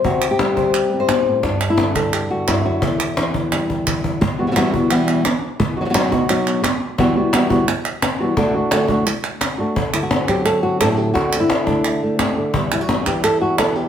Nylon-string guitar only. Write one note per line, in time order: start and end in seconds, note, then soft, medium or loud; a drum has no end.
0.00 0.22 C5 medium
0.05 1.41 C3 medium
0.05 0.30 F#4 medium
0.31 0.91 G4 medium
0.40 1.78 G3 medium
0.56 0.74 C5 medium
0.74 0.99 B4 medium
0.93 1.42 C4 soft
0.93 1.43 E4 soft
1.00 1.43 C5 medium
1.09 1.26 B2 medium
1.27 1.44 A2 medium
1.43 2.47 G2 medium
1.43 2.04 D4 medium
1.70 1.95 E4 medium
1.78 2.82 D3 medium
1.96 2.13 A4 medium
2.13 2.48 G4 medium
2.30 2.64 F#4 medium
2.48 2.65 G2 medium
2.48 2.82 E4 medium
2.65 2.82 F#2 medium
2.65 2.82 F#4 medium
2.82 4.20 E2 medium
2.82 4.21 G4 medium
3.18 4.19 E3 medium
3.53 4.39 G3 soft
4.21 muted nylon-string guitar stroke medium
4.39 4.46 E3 soft
4.39 4.46 G3 medium
4.39 4.47 B3 medium
4.39 4.47 F#4 medium
4.47 4.50 B2 medium
4.47 4.51 E3 medium
4.47 4.51 G3 medium
4.47 4.51 B3 medium
4.47 4.51 F#4 medium
4.51 4.55 B2 medium
4.51 4.55 E3 medium
4.51 4.55 G3 medium
4.51 4.56 B3 medium
4.51 4.56 F#4 medium
4.56 4.72 E2 medium
4.56 4.73 B2 medium
4.56 4.73 E3 medium
4.56 4.73 G3 medium
4.56 4.73 B3 loud
4.56 4.72 F#4 medium
4.73 4.90 E3 soft
4.73 4.90 G3 medium
4.73 4.90 B3 medium
4.73 4.90 F#4 medium
4.90 5.24 E2 medium
4.90 5.24 B2 medium
4.90 5.24 E3 medium
4.90 5.25 G3 medium
4.90 5.25 B3 medium
4.90 5.25 F#4 medium
5.25 muted nylon-string guitar stroke medium
5.60 muted nylon-string guitar stroke medium
5.77 5.81 B3 soft
5.77 5.80 D#4 soft
5.77 5.81 F#4 medium
5.81 5.84 F#3 medium
5.81 5.85 D#4 medium
5.81 5.85 F#4 medium
5.85 5.88 F#3 medium
5.85 5.89 B3 medium
5.85 5.89 D#4 medium
5.85 5.90 F#4 medium
5.90 5.93 F#3 medium
5.90 5.94 B3 medium
5.90 5.94 D#4 medium
5.90 5.94 F#4 medium
5.94 6.11 B2 medium
5.94 6.11 F#3 medium
5.94 6.11 B3 medium
5.94 6.12 D#4 loud
5.94 6.10 F#4 medium
6.11 6.28 B3 soft
6.11 6.29 D#4 medium
6.11 6.28 F#4 medium
6.28 6.62 B2 medium
6.28 6.63 F#3 medium
6.28 6.63 B3 medium
6.28 6.63 D#4 medium
6.28 6.63 F#4 medium
6.63 muted nylon-string guitar stroke medium
6.98 7.15 E2 medium
6.98 7.15 B2 medium
6.98 7.15 E3 medium
6.98 7.16 G3 medium
6.98 7.15 B3 medium
6.98 7.15 F#4 medium
7.16 7.32 E3 medium
7.16 7.32 G3 medium
7.16 7.33 B3 medium
7.16 7.33 F#4 medium
7.33 7.50 E3 medium
7.33 7.50 G3 medium
7.33 7.50 B3 medium
7.33 7.49 F#4 medium
7.50 7.67 E3 medium
7.50 7.67 G3 medium
7.50 7.67 B3 medium
7.50 7.67 F#4 medium
7.68 muted nylon-string guitar stroke medium
8.20 8.37 E3 soft
8.20 8.37 G3 soft
8.20 8.37 B3 medium
8.20 8.37 F#4 medium
8.37 8.54 D3 medium
8.37 8.54 A3 medium
8.37 8.54 D4 medium
8.37 8.53 F#4 loud
8.55 8.71 A3 soft
8.55 8.72 D4 medium
8.55 8.71 F#4 medium
8.72 8.89 D3 medium
8.72 8.89 A3 medium
8.72 8.89 D4 medium
8.72 8.88 F#4 medium
8.89 9.05 A3 soft
8.89 9.05 D4 medium
8.89 9.06 F#4 medium
9.06 muted nylon-string guitar stroke medium
9.58 9.76 A3 soft
9.58 9.76 D4 soft
9.58 9.75 F#4 soft
9.77 11.13 D3 medium
9.93 10.02 E4 medium
10.03 10.28 F#4 medium
10.12 11.14 C4 soft
10.29 11.13 F#3 medium
10.29 10.45 G4 medium
10.45 10.62 A4 medium
10.63 10.80 F#4 medium
10.81 11.13 A2 medium
10.81 10.91 A4 loud
10.92 10.97 A4 medium
10.97 11.13 G4 medium
11.14 12.36 D3 medium
11.14 11.40 F#4 medium
11.34 11.66 C4 soft
11.40 12.01 E4 medium
11.66 12.02 A3 medium
11.66 12.54 D4 medium
12.03 12.52 A3 soft
12.20 12.37 C3 medium
12.37 12.54 D3 medium
12.55 13.88 E2 medium
12.55 13.88 G3 soft
12.72 12.81 E4 medium
12.81 13.06 F#4 medium
13.06 13.88 E3 medium
13.06 13.23 G4 medium
13.24 13.41 A4 loud
13.41 13.58 F#4 medium
13.59 13.88 B2 medium
13.59 13.76 A4 loud
13.76 13.88 G4 medium